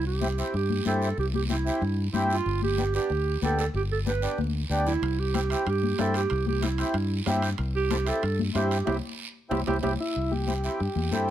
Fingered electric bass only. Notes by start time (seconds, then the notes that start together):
Already playing: C2
0.54 G2
0.86 G2
1.17 C2
1.81 G2
2.13 G2
2.46 G1
3.10 D2
3.42 D2
3.74 G1
4.38 D2
4.69 D2
5.02 C2
5.66 G2
5.99 G2
6.31 C2
6.94 G2
7.26 G2
7.58 C2
8.23 G2
8.55 G2
8.87 C2
9.51 C2
9.67 C2
9.83 C2
10.16 C2
10.80 G2
10.95 E2
11.11 G2